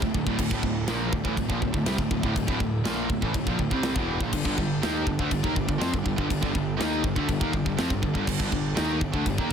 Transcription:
Already playing: D3 A3 E4
0.02 D1 D2 A2, kick
0.14 D1 D2 A2, kick
0.27 D1 D2 A2, kick
0.38 D1 D2 A2 G3, kick, crash, china
0.51 D1 D2 A2, kick
0.63 D1 D2 A2, kick
0.87 A#1 A#2 F3 A#3, snare, china
1.11 D1 D2 A2, kick
1.24 A1 A2 E3, kick
1.37 D1 D2 A2, kick, china
1.48 A#1 A#2 F3, kick
1.61 D1 D2 A2, kick
1.73 D1 D2 A2, kick
1.85 C2 C3 G3, snare, china
1.97 D1 D2 A2, kick
2.11 D1 D2 A2, kick
2.22 D1 D2 A2, kick
2.36 D1 D2 A2, kick, china
2.47 D1 D2 A2, kick
2.60 D1 D2 A2, kick
2.84 A#1 A#2 F3 A#3, snare, china
3.10 D1 D2 A2, kick
3.21 A1 A2 E3, kick
3.34 D1 D2 A2, kick, china
3.46 A#1 A#2 F3, kick
3.59 D1 D2 A2, kick
3.70 C2 C3 G3 C4, kick
3.83 snare, china
3.95 E1 E2 B2 E3, kick
4.21 A#1 A#2 F3, kick
4.33 G1 G2 D3 D4 A4, kick, china, crash
4.44 G1 G2 D3, kick
4.58 G1 G2 D3, kick
4.82 D#2 D#3 A#3 D#4, snare, china
5.06 G1 G2 D3, kick
5.19 D2 D3 A3, kick
5.31 G1 G2 D3, kick, china
5.43 D#2 D#3 A#3, kick
5.55 G1 G2 D3, kick
5.68 G1 G2 D3, kick
5.78 F2 F3 C4, snare, china
5.92 G1 G2 D3, kick
6.03 G1 G2 D3, kick
6.08 G2 D3
6.16 G1 G2 D3, kick
6.21 G2
6.29 G1 G2 D3, kick, china
6.41 G1 G2 D3, kick
6.53 G1 G2 D3, kick
6.57 G2 D3
6.77 D#2 D#3 A#3 D#4, snare, china
7.04 G1 G2 D3, kick
7.16 D2 D3 A3, kick
7.29 G1 G2 D3, kick, china
7.40 D#2 D#3 A#3, kick
7.52 G1 G2 D3, kick
7.66 G1 G2 D3, kick
7.77 F2 F3 C4, snare, china
7.90 G1 G2 D3, kick
8.02 G1 G2 D3, kick
8.14 G1 G2 D3, kick
8.27 G1 G2 D3, kick, crash, china
8.38 G1 G2 D3, kick
8.50 G1 G2 D3, kick
8.75 D#2 D#3 A#3 D#4, snare, china
9.00 G1 G2 D3, kick
9.12 D2 D3 A3, kick
9.25 G1 G2 D3, kick, china
9.38 D#2 D#3 A#3, kick

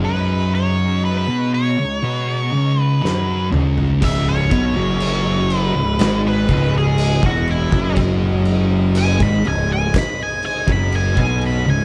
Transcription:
Already playing: F#2 C#3 F#3 G#3 D#4
0.05 B4
0.55 C#5
1.05 B4
1.29 B2 B3
1.54 C#5
1.78 C#2
2.03 B2 B3
2.53 C#2 C#3
2.81 B4
3.02 F#2 F#3, snare
3.51 C#2 C#3, mid tom
3.78 floor tom
4.01 C#1 C#2 C#3 G#3 D#5 E5, kick, crash
4.28 C#5
4.50 B1 B2 B3, kick, crash
4.75 F#1 F#2 F#3
5.00 crash
5.50 crash
5.56 B4
5.75 C#1 C#2
5.99 G#1 G#2 G#3, snare, crash
6.27 B4
6.48 C#1 C#2 C#3, kick, crash
6.78 G#4
6.98 crash
7.23 E1 E2 E3 F#4, kick
7.48 E4, crash
7.72 F#1 F#2 F#3, kick
7.96 kick, crash
8.45 crash
8.95 G#5, crash
9.19 G#1 G#2 G#3 B5, kick
9.44 C#1 C#2 G#5, crash
9.72 G#5
9.94 kick, snare, crash
9.98 B5
10.23 G#5
10.43 G#5, crash
10.67 F#1 F#2 F#3, kick
10.72 B5
10.92 G#5, crash
11.16 B1 B2 B3 G#5, kick
11.41 crash
11.46 B5
11.66 C#1 C#2 G#5

